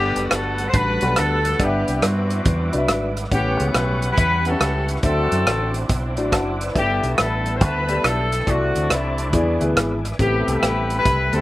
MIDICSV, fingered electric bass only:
0, 0, Header, 1, 2, 480
1, 0, Start_track
1, 0, Key_signature, 1, "major"
1, 0, Tempo, 430108
1, 1778, Time_signature, 4, 2, 24, 8
1, 12735, End_track
2, 0, Start_track
2, 0, Title_t, "Fingered electric bass"
2, 0, Program_c, 0, 33
2, 0, Note_on_c, 0, 31, 97
2, 126, Note_off_c, 0, 31, 0
2, 179, Note_on_c, 0, 30, 74
2, 318, Note_off_c, 0, 30, 0
2, 350, Note_on_c, 0, 31, 76
2, 753, Note_off_c, 0, 31, 0
2, 822, Note_on_c, 0, 33, 89
2, 1086, Note_off_c, 0, 33, 0
2, 1143, Note_on_c, 0, 35, 86
2, 1280, Note_off_c, 0, 35, 0
2, 1313, Note_on_c, 0, 38, 81
2, 1714, Note_off_c, 0, 38, 0
2, 1783, Note_on_c, 0, 31, 100
2, 2046, Note_off_c, 0, 31, 0
2, 2103, Note_on_c, 0, 36, 72
2, 2240, Note_off_c, 0, 36, 0
2, 2269, Note_on_c, 0, 43, 70
2, 2672, Note_off_c, 0, 43, 0
2, 2741, Note_on_c, 0, 40, 82
2, 3004, Note_off_c, 0, 40, 0
2, 3057, Note_on_c, 0, 36, 71
2, 3196, Note_off_c, 0, 36, 0
2, 3224, Note_on_c, 0, 32, 81
2, 3629, Note_off_c, 0, 32, 0
2, 3702, Note_on_c, 0, 33, 98
2, 3964, Note_off_c, 0, 33, 0
2, 4020, Note_on_c, 0, 37, 86
2, 4157, Note_off_c, 0, 37, 0
2, 4181, Note_on_c, 0, 35, 81
2, 4586, Note_off_c, 0, 35, 0
2, 4661, Note_on_c, 0, 40, 84
2, 5066, Note_off_c, 0, 40, 0
2, 5138, Note_on_c, 0, 37, 82
2, 5544, Note_off_c, 0, 37, 0
2, 5616, Note_on_c, 0, 38, 93
2, 5880, Note_off_c, 0, 38, 0
2, 5934, Note_on_c, 0, 42, 76
2, 6074, Note_off_c, 0, 42, 0
2, 6106, Note_on_c, 0, 33, 79
2, 6509, Note_off_c, 0, 33, 0
2, 6580, Note_on_c, 0, 35, 79
2, 6896, Note_off_c, 0, 35, 0
2, 6896, Note_on_c, 0, 33, 83
2, 7034, Note_off_c, 0, 33, 0
2, 7058, Note_on_c, 0, 30, 80
2, 7464, Note_off_c, 0, 30, 0
2, 7541, Note_on_c, 0, 31, 94
2, 7803, Note_off_c, 0, 31, 0
2, 7849, Note_on_c, 0, 35, 87
2, 7990, Note_off_c, 0, 35, 0
2, 8025, Note_on_c, 0, 33, 74
2, 8494, Note_off_c, 0, 33, 0
2, 8494, Note_on_c, 0, 38, 81
2, 8901, Note_off_c, 0, 38, 0
2, 8976, Note_on_c, 0, 35, 87
2, 9382, Note_off_c, 0, 35, 0
2, 9456, Note_on_c, 0, 36, 88
2, 9720, Note_off_c, 0, 36, 0
2, 9768, Note_on_c, 0, 38, 74
2, 9910, Note_off_c, 0, 38, 0
2, 9929, Note_on_c, 0, 36, 76
2, 10416, Note_off_c, 0, 36, 0
2, 10416, Note_on_c, 0, 40, 92
2, 10680, Note_off_c, 0, 40, 0
2, 10722, Note_on_c, 0, 38, 74
2, 10866, Note_off_c, 0, 38, 0
2, 10882, Note_on_c, 0, 32, 89
2, 11295, Note_off_c, 0, 32, 0
2, 11376, Note_on_c, 0, 33, 91
2, 11641, Note_off_c, 0, 33, 0
2, 11687, Note_on_c, 0, 36, 79
2, 11830, Note_off_c, 0, 36, 0
2, 11850, Note_on_c, 0, 33, 79
2, 12261, Note_off_c, 0, 33, 0
2, 12338, Note_on_c, 0, 36, 89
2, 12602, Note_off_c, 0, 36, 0
2, 12640, Note_on_c, 0, 38, 78
2, 12735, Note_off_c, 0, 38, 0
2, 12735, End_track
0, 0, End_of_file